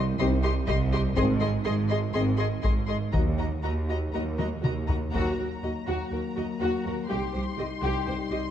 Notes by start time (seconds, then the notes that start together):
Already playing: C2
0.18 C2 D#3 C4 G4 D#5 C6
0.43 G4 D#5 C6
0.67 C2 G4 D#5 C6, taiko
0.92 G4 D#5 C6
1.16 G#1 G#2 D#3 C4 G#4 D#5 C6, taiko
1.40 G#4 D#5 C6
1.65 G#1 G#2 G#4 D#5 C6
1.89 G#4 D#5 C6
2.13 G#1 G#2 D#3 C4 G#4 D#5 C6
2.38 G#4 D#5 C6
2.63 G#1 G#2 G#4 D#5 C6, taiko
2.88 G#4 D#5 C6
3.12 D#2 D#3 F#3 A#3 F#4 D#5 A#5, taiko
3.38 F#4 D#5 A#5
3.63 D#2 F#4 D#5 A#5
3.88 F#4 D#5 A#5
4.13 D#2 F#3 A#3 F#4 D#5 A#5
4.38 F#4 D#5 A#5, taiko high
4.63 D#2 F#4 D#5 A#5, taiko mid
4.88 F#4 D#5 A#5, taiko low
5.12 D#2 F#3 A#3 F#4 A#5, taiko
5.38 D#2 F#4 A#4
5.63 D#2 F#4 D#5
5.87 D#2 F#4
6.12 D#2 F#4 A#4
6.36 D#2 F#4 D#5
6.60 D#2 F#4
6.85 D#2 F#4 A#4
7.09 C2 G3 D#4 G4 C6
7.34 C2 G4 C5
7.58 C2 G4 D#5
7.83 C2 G4
8.07 C2 G4 C5
8.31 C2 G4 D#5